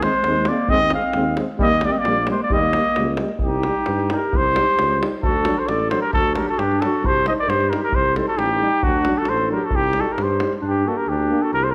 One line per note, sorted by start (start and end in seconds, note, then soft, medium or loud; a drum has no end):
0.03 0.12 G#3 medium
0.03 0.50 G#3 medium
0.03 0.13 C4 medium
0.03 0.50 C5 loud
0.03 davul high medium
0.13 davul high soft
0.23 0.49 D#2 loud
0.23 0.35 G#3 medium
0.23 0.35 C4 medium
0.23 davul high medium
0.45 0.58 G#3 medium
0.45 0.71 A#3 medium
0.45 0.57 C4 medium
0.45 0.71 D5 medium
0.45 davul high medium
0.68 0.94 D#2 medium
0.68 0.79 G#3 loud
0.68 0.92 C4 medium
0.68 0.80 C4 medium
0.68 0.92 D#5 loud
0.68 davul low medium
0.90 1.02 G#3 medium
0.90 1.03 C4 medium
0.90 1.36 C4 medium
0.90 1.36 F5 medium
0.90 davul high medium
1.02 davul high soft
1.13 1.40 D#2 medium
1.13 1.25 G#3 medium
1.13 1.25 C4 medium
1.13 davul high medium
1.37 1.47 G#3 medium
1.37 1.48 C4 medium
1.37 davul high medium
1.58 1.85 D#2 medium
1.58 1.68 G3 loud
1.58 1.84 A#3 medium
1.58 1.71 A#3 medium
1.58 1.86 D#5 loud
1.58 davul low loud
1.81 1.92 G3 medium
1.81 1.93 A#3 medium
1.81 1.90 A#3 medium
1.81 1.93 D5 loud
1.81 davul high medium
1.89 2.00 C4 medium
1.89 2.00 D#5 medium
1.94 davul high soft
1.98 2.29 A#3 medium
1.98 2.29 D5 loud
2.05 2.30 A#1 medium
2.05 2.15 G3 medium
2.05 2.16 A#3 medium
2.05 davul high medium
2.27 2.38 G3 medium
2.27 davul high medium
2.31 2.41 G#3 medium
2.31 2.40 A#3 medium
2.31 2.41 C5 medium
2.43 2.54 A#3 medium
2.43 2.54 D5 medium
2.50 2.76 D#2 loud
2.50 2.60 G3 medium
2.50 2.62 A#3 medium
2.50 3.20 D#5 loud
2.50 davul low medium
2.54 3.21 A#3 medium
2.73 2.84 G3 medium
2.73 2.85 A#3 medium
2.73 davul high medium
2.85 davul high soft
2.96 3.22 C#2 medium
2.96 3.06 G3 medium
2.96 3.08 A#3 medium
2.96 davul high medium
3.17 3.28 G3 medium
3.17 3.29 A#3 medium
3.17 davul high medium
3.28 davul high soft
3.39 3.67 C2 medium
3.39 4.15 G4 medium
3.39 davul low medium
3.45 4.20 D#4 medium
3.63 3.75 G3 medium
3.63 3.75 D#4 medium
3.63 davul high medium
3.86 4.13 G2 medium
3.86 davul high medium
4.00 davul high soft
4.10 4.20 G3 medium
4.10 4.19 D#4 medium
4.10 davul high medium
4.14 4.38 A#4 medium
4.18 4.39 G4 medium
4.33 4.58 C2 medium
4.33 5.03 C5 loud
4.33 davul low loud
4.39 5.04 G4 medium
4.55 4.64 G3 medium
4.55 4.65 D#4 medium
4.55 davul high medium
4.78 5.03 C#2 medium
4.78 davul high medium
4.91 davul high soft
5.01 5.10 G3 medium
5.01 5.11 D#4 medium
5.01 davul high medium
5.23 5.49 D2 medium
5.23 5.61 F#4 medium
5.23 5.60 A4 medium
5.23 davul low loud
5.45 5.56 F#3 medium
5.45 5.55 D4 medium
5.45 davul high medium
5.58 5.70 A4 medium
5.58 5.69 C5 medium
5.67 5.94 A1 loud
5.67 5.91 A4 loud
5.67 5.90 D5 medium
5.67 davul high medium
5.79 davul high soft
5.90 6.01 F#3 medium
5.90 6.00 D4 medium
5.90 6.03 A4 medium
5.90 6.01 C5 medium
5.90 davul high medium
6.01 6.14 G4 medium
6.01 6.12 A#4 medium
6.13 6.39 D2 loud
6.13 6.36 F#4 medium
6.13 6.35 A4 loud
6.13 davul low loud
6.25 davul high soft
6.35 6.47 F#3 medium
6.35 6.45 D4 medium
6.35 6.49 G4 medium
6.35 6.47 A#4 medium
6.35 davul high medium
6.49 6.64 F#4 medium
6.49 6.60 A4 medium
6.49 davul high soft
6.58 6.83 G2 loud
6.58 6.86 D4 medium
6.58 6.82 G4 loud
6.58 davul high medium
6.71 davul high soft
6.81 6.92 F#3 medium
6.81 6.91 D4 medium
6.81 7.11 F#4 medium
6.81 7.07 A4 medium
6.81 davul high medium
6.93 davul high soft
7.03 7.28 C2 medium
7.03 7.27 C5 loud
7.03 davul low medium
7.09 7.29 G4 medium
7.25 7.35 G3 medium
7.25 7.37 D#4 medium
7.25 7.33 D#5 medium
7.25 davul high medium
7.30 7.35 C5 medium
7.39 7.49 A#4 medium
7.39 7.51 D5 loud
7.48 7.73 G2 loud
7.48 7.71 G4 medium
7.48 7.71 C5 medium
7.48 davul high medium
7.60 davul high soft
7.70 7.82 G3 medium
7.70 7.81 D#4 medium
7.70 7.79 G4 medium
7.70 7.83 A#4 medium
7.70 davul high medium
7.80 7.94 G4 medium
7.80 7.97 A#4 medium
7.92 8.19 C2 medium
7.92 8.15 G4 medium
7.92 8.17 C5 loud
7.92 davul low medium
8.16 8.27 G3 medium
8.16 8.25 D#4 medium
8.16 8.27 A4 medium
8.16 8.27 C5 medium
8.16 davul high medium
8.28 8.38 F#4 medium
8.28 8.39 A4 medium
8.36 8.63 A1 loud
8.36 8.85 D#4 medium
8.36 8.84 G4 loud
8.36 davul high medium
8.61 8.70 G3 medium
8.61 8.70 D#4 medium
8.83 9.09 D2 medium
8.83 9.24 D4 medium
8.83 9.20 F#4 loud
8.83 davul low loud
9.04 9.15 F#3 medium
9.04 9.14 D4 medium
9.04 davul high medium
9.18 9.30 A4 medium
9.22 9.31 F#4 medium
9.22 davul high medium
9.29 9.54 A1 loud
9.29 9.52 A4 medium
9.29 9.51 C5 medium
9.37 davul high soft
9.49 9.60 F#3 medium
9.49 9.58 D4 medium
9.49 9.66 A#4 medium
9.56 9.67 G4 medium
9.64 9.79 F#4 medium
9.64 9.77 A4 medium
9.71 9.98 C2 loud
9.71 davul low medium
9.75 10.02 D#4 medium
9.75 10.02 G4 loud
9.93 10.06 D#4 medium
9.93 davul high medium
9.97 10.06 G3 medium
9.97 10.14 F#4 medium
9.97 10.13 A4 medium
10.12 10.21 G4 medium
10.12 10.24 A#4 medium
10.18 10.43 G2 medium
10.18 10.54 G4 medium
10.18 davul high medium
10.23 10.55 C5 medium
10.40 10.50 G3 medium
10.40 10.50 D#4 medium
10.40 davul high medium
10.53 davul high soft
10.61 10.87 G2 medium
10.61 10.87 D4 medium
10.67 10.90 G4 medium
10.85 10.95 A#3 medium
10.85 10.96 D4 medium
10.85 10.98 F#4 medium
10.85 10.99 A4 medium
10.97 11.12 G4 medium
10.97 11.11 A#4 medium
11.08 11.32 D2 medium
11.08 11.46 D4 medium
11.08 11.43 G4 medium
11.30 11.39 A#3 medium
11.30 11.40 D4 medium
11.42 11.54 F#4 medium
11.42 11.53 A4 medium
11.52 11.75 C2 medium
11.52 11.68 G4 medium
11.52 11.65 A#4 loud
11.63 11.75 A4 medium
11.63 11.72 C5 medium
11.71 11.75 A#4 loud